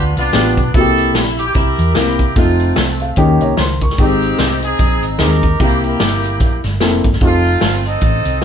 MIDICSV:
0, 0, Header, 1, 5, 480
1, 0, Start_track
1, 0, Tempo, 404313
1, 880, Time_signature, 4, 2, 24, 8
1, 10024, End_track
2, 0, Start_track
2, 0, Title_t, "Horn section"
2, 0, Program_c, 0, 61
2, 0, Note_on_c, 0, 59, 66
2, 0, Note_on_c, 0, 62, 62
2, 0, Note_on_c, 0, 65, 68
2, 149, Note_off_c, 0, 65, 0
2, 193, Note_off_c, 0, 59, 0
2, 194, Note_off_c, 0, 62, 0
2, 207, Note_on_c, 0, 65, 82
2, 208, Note_on_c, 0, 59, 67
2, 208, Note_on_c, 0, 62, 65
2, 649, Note_off_c, 0, 65, 0
2, 838, Note_off_c, 0, 59, 0
2, 838, Note_off_c, 0, 62, 0
2, 882, Note_on_c, 0, 69, 94
2, 883, Note_on_c, 0, 64, 72
2, 1328, Note_off_c, 0, 69, 0
2, 1638, Note_on_c, 0, 67, 73
2, 1684, Note_off_c, 0, 67, 0
2, 1737, Note_on_c, 0, 67, 69
2, 1795, Note_off_c, 0, 64, 0
2, 1821, Note_off_c, 0, 67, 0
2, 1830, Note_on_c, 0, 70, 91
2, 1836, Note_on_c, 0, 67, 61
2, 1838, Note_on_c, 0, 64, 67
2, 2311, Note_off_c, 0, 64, 0
2, 2315, Note_off_c, 0, 67, 0
2, 2316, Note_off_c, 0, 70, 0
2, 2326, Note_on_c, 0, 64, 57
2, 2328, Note_on_c, 0, 58, 61
2, 2330, Note_on_c, 0, 67, 84
2, 2771, Note_off_c, 0, 64, 0
2, 2772, Note_off_c, 0, 58, 0
2, 2773, Note_off_c, 0, 67, 0
2, 2798, Note_on_c, 0, 60, 53
2, 2802, Note_on_c, 0, 65, 76
2, 2806, Note_on_c, 0, 57, 53
2, 3249, Note_off_c, 0, 65, 0
2, 3714, Note_off_c, 0, 60, 0
2, 3718, Note_off_c, 0, 57, 0
2, 4734, Note_on_c, 0, 67, 87
2, 4741, Note_on_c, 0, 60, 65
2, 4741, Note_on_c, 0, 63, 62
2, 5440, Note_off_c, 0, 67, 0
2, 5481, Note_off_c, 0, 60, 0
2, 5481, Note_off_c, 0, 63, 0
2, 5485, Note_on_c, 0, 68, 85
2, 5495, Note_on_c, 0, 60, 62
2, 5495, Note_on_c, 0, 63, 61
2, 5964, Note_off_c, 0, 68, 0
2, 6163, Note_off_c, 0, 63, 0
2, 6173, Note_on_c, 0, 70, 91
2, 6177, Note_on_c, 0, 63, 66
2, 6179, Note_on_c, 0, 67, 76
2, 6401, Note_off_c, 0, 60, 0
2, 6615, Note_off_c, 0, 70, 0
2, 6617, Note_off_c, 0, 63, 0
2, 6618, Note_off_c, 0, 67, 0
2, 6661, Note_on_c, 0, 64, 66
2, 6664, Note_on_c, 0, 67, 97
2, 6666, Note_on_c, 0, 58, 70
2, 6921, Note_off_c, 0, 64, 0
2, 6926, Note_off_c, 0, 58, 0
2, 6926, Note_off_c, 0, 67, 0
2, 6935, Note_on_c, 0, 64, 55
2, 6940, Note_on_c, 0, 58, 53
2, 6941, Note_on_c, 0, 67, 72
2, 7840, Note_off_c, 0, 64, 0
2, 7842, Note_off_c, 0, 58, 0
2, 7842, Note_off_c, 0, 67, 0
2, 8571, Note_on_c, 0, 57, 63
2, 8573, Note_on_c, 0, 60, 63
2, 8589, Note_on_c, 0, 65, 93
2, 9284, Note_off_c, 0, 65, 0
2, 9308, Note_off_c, 0, 60, 0
2, 9322, Note_on_c, 0, 60, 68
2, 9326, Note_on_c, 0, 63, 69
2, 9330, Note_on_c, 0, 69, 91
2, 9476, Note_off_c, 0, 57, 0
2, 10004, Note_off_c, 0, 69, 0
2, 10024, Note_off_c, 0, 60, 0
2, 10024, Note_off_c, 0, 63, 0
2, 10024, End_track
3, 0, Start_track
3, 0, Title_t, "Grand piano"
3, 0, Program_c, 1, 0
3, 403, Note_on_c, 1, 59, 67
3, 405, Note_on_c, 1, 62, 56
3, 405, Note_on_c, 1, 65, 57
3, 411, Note_on_c, 1, 67, 72
3, 692, Note_off_c, 1, 59, 0
3, 693, Note_off_c, 1, 62, 0
3, 693, Note_off_c, 1, 65, 0
3, 696, Note_off_c, 1, 67, 0
3, 890, Note_on_c, 1, 58, 68
3, 893, Note_on_c, 1, 60, 63
3, 895, Note_on_c, 1, 66, 56
3, 896, Note_on_c, 1, 48, 59
3, 898, Note_on_c, 1, 64, 60
3, 954, Note_off_c, 1, 66, 0
3, 955, Note_on_c, 1, 67, 75
3, 1400, Note_off_c, 1, 58, 0
3, 1402, Note_off_c, 1, 60, 0
3, 1404, Note_off_c, 1, 64, 0
3, 1432, Note_off_c, 1, 67, 0
3, 1600, Note_off_c, 1, 48, 0
3, 2324, Note_on_c, 1, 58, 68
3, 2330, Note_on_c, 1, 60, 57
3, 2334, Note_on_c, 1, 64, 59
3, 2335, Note_on_c, 1, 70, 73
3, 2614, Note_off_c, 1, 58, 0
3, 2617, Note_off_c, 1, 60, 0
3, 2619, Note_off_c, 1, 64, 0
3, 2620, Note_off_c, 1, 70, 0
3, 2810, Note_on_c, 1, 57, 66
3, 2813, Note_on_c, 1, 60, 62
3, 2818, Note_on_c, 1, 63, 64
3, 2818, Note_on_c, 1, 65, 77
3, 3322, Note_off_c, 1, 57, 0
3, 3323, Note_off_c, 1, 60, 0
3, 3325, Note_off_c, 1, 63, 0
3, 3325, Note_off_c, 1, 65, 0
3, 3582, Note_on_c, 1, 77, 65
3, 3761, Note_off_c, 1, 77, 0
3, 3771, Note_on_c, 1, 61, 78
3, 3774, Note_on_c, 1, 51, 72
3, 3774, Note_on_c, 1, 58, 83
3, 3774, Note_on_c, 1, 63, 77
3, 3776, Note_on_c, 1, 79, 67
3, 3780, Note_on_c, 1, 67, 91
3, 4029, Note_off_c, 1, 79, 0
3, 4058, Note_on_c, 1, 73, 60
3, 4059, Note_on_c, 1, 82, 60
3, 4167, Note_off_c, 1, 61, 0
3, 4168, Note_off_c, 1, 58, 0
3, 4168, Note_off_c, 1, 63, 0
3, 4171, Note_off_c, 1, 67, 0
3, 4239, Note_off_c, 1, 82, 0
3, 4242, Note_off_c, 1, 73, 0
3, 4264, Note_on_c, 1, 84, 62
3, 4265, Note_on_c, 1, 72, 58
3, 4480, Note_off_c, 1, 51, 0
3, 4513, Note_off_c, 1, 84, 0
3, 4519, Note_off_c, 1, 72, 0
3, 4542, Note_on_c, 1, 70, 55
3, 4544, Note_on_c, 1, 85, 63
3, 4722, Note_off_c, 1, 85, 0
3, 4744, Note_on_c, 1, 56, 62
3, 4745, Note_on_c, 1, 60, 56
3, 4747, Note_on_c, 1, 44, 57
3, 4748, Note_on_c, 1, 63, 58
3, 4749, Note_on_c, 1, 67, 71
3, 4989, Note_off_c, 1, 70, 0
3, 5249, Note_off_c, 1, 56, 0
3, 5249, Note_off_c, 1, 60, 0
3, 5251, Note_off_c, 1, 63, 0
3, 5251, Note_off_c, 1, 67, 0
3, 5447, Note_off_c, 1, 44, 0
3, 6169, Note_on_c, 1, 60, 59
3, 6172, Note_on_c, 1, 56, 62
3, 6174, Note_on_c, 1, 63, 62
3, 6177, Note_on_c, 1, 68, 71
3, 6457, Note_off_c, 1, 60, 0
3, 6459, Note_off_c, 1, 56, 0
3, 6460, Note_off_c, 1, 63, 0
3, 6461, Note_off_c, 1, 68, 0
3, 6645, Note_on_c, 1, 58, 67
3, 6650, Note_on_c, 1, 48, 60
3, 6651, Note_on_c, 1, 60, 61
3, 6652, Note_on_c, 1, 64, 58
3, 6655, Note_on_c, 1, 67, 73
3, 7158, Note_off_c, 1, 58, 0
3, 7161, Note_off_c, 1, 60, 0
3, 7162, Note_off_c, 1, 64, 0
3, 7163, Note_off_c, 1, 67, 0
3, 7357, Note_off_c, 1, 48, 0
3, 8078, Note_on_c, 1, 58, 75
3, 8080, Note_on_c, 1, 60, 73
3, 8084, Note_on_c, 1, 64, 76
3, 8089, Note_on_c, 1, 69, 81
3, 8370, Note_off_c, 1, 58, 0
3, 8371, Note_off_c, 1, 60, 0
3, 8373, Note_off_c, 1, 64, 0
3, 8376, Note_off_c, 1, 69, 0
3, 8566, Note_on_c, 1, 60, 67
3, 8571, Note_on_c, 1, 65, 61
3, 8572, Note_on_c, 1, 63, 61
3, 8579, Note_on_c, 1, 67, 57
3, 8630, Note_on_c, 1, 69, 76
3, 8637, Note_off_c, 1, 67, 0
3, 9076, Note_off_c, 1, 60, 0
3, 9079, Note_off_c, 1, 65, 0
3, 9080, Note_off_c, 1, 63, 0
3, 9109, Note_off_c, 1, 69, 0
3, 10024, End_track
4, 0, Start_track
4, 0, Title_t, "Fingered electric bass"
4, 0, Program_c, 2, 33
4, 0, Note_on_c, 2, 38, 79
4, 155, Note_off_c, 2, 38, 0
4, 197, Note_on_c, 2, 36, 83
4, 369, Note_off_c, 2, 36, 0
4, 402, Note_on_c, 2, 33, 86
4, 680, Note_off_c, 2, 33, 0
4, 680, Note_on_c, 2, 35, 85
4, 851, Note_off_c, 2, 35, 0
4, 885, Note_on_c, 2, 36, 92
4, 1361, Note_off_c, 2, 36, 0
4, 1361, Note_on_c, 2, 34, 81
4, 1769, Note_off_c, 2, 34, 0
4, 1844, Note_on_c, 2, 36, 93
4, 2080, Note_off_c, 2, 36, 0
4, 2115, Note_on_c, 2, 40, 82
4, 2289, Note_off_c, 2, 40, 0
4, 2323, Note_on_c, 2, 36, 80
4, 2804, Note_on_c, 2, 29, 90
4, 2822, Note_off_c, 2, 36, 0
4, 3212, Note_off_c, 2, 29, 0
4, 3286, Note_on_c, 2, 36, 83
4, 3693, Note_off_c, 2, 36, 0
4, 3764, Note_on_c, 2, 39, 84
4, 4001, Note_off_c, 2, 39, 0
4, 4044, Note_on_c, 2, 36, 72
4, 4215, Note_off_c, 2, 36, 0
4, 4252, Note_on_c, 2, 37, 76
4, 4657, Note_off_c, 2, 37, 0
4, 4732, Note_on_c, 2, 32, 85
4, 5137, Note_off_c, 2, 32, 0
4, 5210, Note_on_c, 2, 36, 75
4, 5616, Note_off_c, 2, 36, 0
4, 5691, Note_on_c, 2, 34, 86
4, 5962, Note_off_c, 2, 34, 0
4, 5962, Note_on_c, 2, 32, 75
4, 6164, Note_on_c, 2, 39, 85
4, 6182, Note_off_c, 2, 32, 0
4, 6572, Note_off_c, 2, 39, 0
4, 6647, Note_on_c, 2, 36, 84
4, 7054, Note_off_c, 2, 36, 0
4, 7127, Note_on_c, 2, 31, 75
4, 7607, Note_off_c, 2, 31, 0
4, 7607, Note_on_c, 2, 34, 75
4, 7841, Note_off_c, 2, 34, 0
4, 7884, Note_on_c, 2, 31, 91
4, 8084, Note_off_c, 2, 31, 0
4, 8084, Note_on_c, 2, 29, 89
4, 8319, Note_off_c, 2, 29, 0
4, 8362, Note_on_c, 2, 31, 85
4, 8532, Note_off_c, 2, 31, 0
4, 8562, Note_on_c, 2, 29, 91
4, 8969, Note_off_c, 2, 29, 0
4, 9040, Note_on_c, 2, 31, 81
4, 9447, Note_off_c, 2, 31, 0
4, 9518, Note_on_c, 2, 33, 81
4, 9754, Note_off_c, 2, 33, 0
4, 9803, Note_on_c, 2, 36, 82
4, 9971, Note_off_c, 2, 36, 0
4, 10024, End_track
5, 0, Start_track
5, 0, Title_t, "Drums"
5, 199, Note_on_c, 9, 42, 76
5, 317, Note_off_c, 9, 42, 0
5, 391, Note_on_c, 9, 38, 89
5, 392, Note_on_c, 9, 42, 80
5, 510, Note_off_c, 9, 38, 0
5, 511, Note_off_c, 9, 42, 0
5, 681, Note_on_c, 9, 36, 73
5, 682, Note_on_c, 9, 42, 68
5, 800, Note_off_c, 9, 36, 0
5, 801, Note_off_c, 9, 42, 0
5, 879, Note_on_c, 9, 42, 82
5, 881, Note_on_c, 9, 36, 101
5, 998, Note_off_c, 9, 42, 0
5, 1000, Note_off_c, 9, 36, 0
5, 1160, Note_on_c, 9, 42, 60
5, 1279, Note_off_c, 9, 42, 0
5, 1361, Note_on_c, 9, 38, 101
5, 1365, Note_on_c, 9, 42, 69
5, 1480, Note_off_c, 9, 38, 0
5, 1484, Note_off_c, 9, 42, 0
5, 1644, Note_on_c, 9, 42, 76
5, 1763, Note_off_c, 9, 42, 0
5, 1834, Note_on_c, 9, 42, 84
5, 1843, Note_on_c, 9, 36, 98
5, 1953, Note_off_c, 9, 42, 0
5, 1961, Note_off_c, 9, 36, 0
5, 2121, Note_on_c, 9, 42, 71
5, 2240, Note_off_c, 9, 42, 0
5, 2313, Note_on_c, 9, 38, 87
5, 2314, Note_on_c, 9, 42, 83
5, 2432, Note_off_c, 9, 38, 0
5, 2433, Note_off_c, 9, 42, 0
5, 2603, Note_on_c, 9, 36, 72
5, 2603, Note_on_c, 9, 42, 68
5, 2722, Note_off_c, 9, 36, 0
5, 2722, Note_off_c, 9, 42, 0
5, 2800, Note_on_c, 9, 42, 79
5, 2803, Note_on_c, 9, 36, 105
5, 2918, Note_off_c, 9, 42, 0
5, 2922, Note_off_c, 9, 36, 0
5, 3082, Note_on_c, 9, 42, 61
5, 3201, Note_off_c, 9, 42, 0
5, 3277, Note_on_c, 9, 38, 103
5, 3281, Note_on_c, 9, 42, 67
5, 3396, Note_off_c, 9, 38, 0
5, 3400, Note_off_c, 9, 42, 0
5, 3560, Note_on_c, 9, 42, 69
5, 3679, Note_off_c, 9, 42, 0
5, 3751, Note_on_c, 9, 42, 82
5, 3765, Note_on_c, 9, 36, 96
5, 3870, Note_off_c, 9, 42, 0
5, 3883, Note_off_c, 9, 36, 0
5, 4043, Note_on_c, 9, 42, 70
5, 4161, Note_off_c, 9, 42, 0
5, 4240, Note_on_c, 9, 38, 87
5, 4241, Note_on_c, 9, 42, 74
5, 4359, Note_off_c, 9, 38, 0
5, 4360, Note_off_c, 9, 42, 0
5, 4527, Note_on_c, 9, 42, 62
5, 4529, Note_on_c, 9, 36, 77
5, 4629, Note_on_c, 9, 38, 36
5, 4645, Note_off_c, 9, 42, 0
5, 4647, Note_off_c, 9, 36, 0
5, 4727, Note_on_c, 9, 42, 78
5, 4730, Note_on_c, 9, 36, 104
5, 4748, Note_off_c, 9, 38, 0
5, 4845, Note_off_c, 9, 42, 0
5, 4849, Note_off_c, 9, 36, 0
5, 5011, Note_on_c, 9, 42, 58
5, 5130, Note_off_c, 9, 42, 0
5, 5206, Note_on_c, 9, 38, 102
5, 5210, Note_on_c, 9, 42, 70
5, 5325, Note_off_c, 9, 38, 0
5, 5329, Note_off_c, 9, 42, 0
5, 5492, Note_on_c, 9, 42, 71
5, 5610, Note_off_c, 9, 42, 0
5, 5685, Note_on_c, 9, 42, 84
5, 5690, Note_on_c, 9, 36, 91
5, 5804, Note_off_c, 9, 42, 0
5, 5809, Note_off_c, 9, 36, 0
5, 5969, Note_on_c, 9, 42, 70
5, 6087, Note_off_c, 9, 42, 0
5, 6157, Note_on_c, 9, 38, 92
5, 6158, Note_on_c, 9, 42, 81
5, 6276, Note_off_c, 9, 38, 0
5, 6277, Note_off_c, 9, 42, 0
5, 6448, Note_on_c, 9, 36, 75
5, 6450, Note_on_c, 9, 42, 64
5, 6567, Note_off_c, 9, 36, 0
5, 6569, Note_off_c, 9, 42, 0
5, 6649, Note_on_c, 9, 36, 99
5, 6649, Note_on_c, 9, 42, 76
5, 6767, Note_off_c, 9, 36, 0
5, 6767, Note_off_c, 9, 42, 0
5, 6930, Note_on_c, 9, 42, 60
5, 7049, Note_off_c, 9, 42, 0
5, 7120, Note_on_c, 9, 38, 105
5, 7124, Note_on_c, 9, 42, 69
5, 7239, Note_off_c, 9, 38, 0
5, 7243, Note_off_c, 9, 42, 0
5, 7405, Note_on_c, 9, 42, 72
5, 7523, Note_off_c, 9, 42, 0
5, 7596, Note_on_c, 9, 42, 83
5, 7604, Note_on_c, 9, 36, 94
5, 7715, Note_off_c, 9, 42, 0
5, 7723, Note_off_c, 9, 36, 0
5, 7880, Note_on_c, 9, 42, 71
5, 7883, Note_on_c, 9, 38, 33
5, 7999, Note_off_c, 9, 42, 0
5, 8001, Note_off_c, 9, 38, 0
5, 8078, Note_on_c, 9, 38, 88
5, 8079, Note_on_c, 9, 42, 78
5, 8197, Note_off_c, 9, 38, 0
5, 8198, Note_off_c, 9, 42, 0
5, 8363, Note_on_c, 9, 36, 81
5, 8365, Note_on_c, 9, 42, 66
5, 8462, Note_on_c, 9, 38, 37
5, 8482, Note_off_c, 9, 36, 0
5, 8484, Note_off_c, 9, 42, 0
5, 8557, Note_on_c, 9, 42, 77
5, 8562, Note_on_c, 9, 36, 101
5, 8581, Note_off_c, 9, 38, 0
5, 8675, Note_off_c, 9, 42, 0
5, 8681, Note_off_c, 9, 36, 0
5, 8836, Note_on_c, 9, 42, 60
5, 8955, Note_off_c, 9, 42, 0
5, 9034, Note_on_c, 9, 38, 100
5, 9038, Note_on_c, 9, 42, 68
5, 9153, Note_off_c, 9, 38, 0
5, 9157, Note_off_c, 9, 42, 0
5, 9320, Note_on_c, 9, 42, 70
5, 9439, Note_off_c, 9, 42, 0
5, 9510, Note_on_c, 9, 42, 78
5, 9519, Note_on_c, 9, 36, 94
5, 9628, Note_off_c, 9, 42, 0
5, 9638, Note_off_c, 9, 36, 0
5, 9797, Note_on_c, 9, 42, 73
5, 9915, Note_off_c, 9, 42, 0
5, 10024, End_track
0, 0, End_of_file